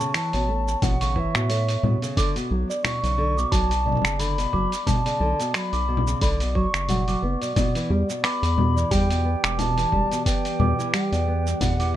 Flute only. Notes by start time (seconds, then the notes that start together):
Already playing: A5
0.15 A5
0.82 F#5
1.16 E5 F#5
2.84 C#6
3.52 A5
4.19 B5
4.87 A5
5.54 B5 C#6
6.22 B5
6.55 C#6
8.24 B5
8.91 G5
9.59 A5
10.26 G5
10.93 G5
11.61 F#5